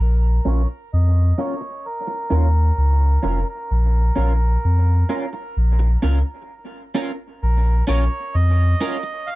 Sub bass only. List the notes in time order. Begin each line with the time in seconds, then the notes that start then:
0.00 A#1
0.46 A#1
0.93 F2
2.31 D#2
2.78 C#2
3.24 F1
3.71 A#1
4.18 A#1
4.65 F2
5.57 A#1
6.04 C#2
7.43 A#1
7.89 A#1
8.35 F2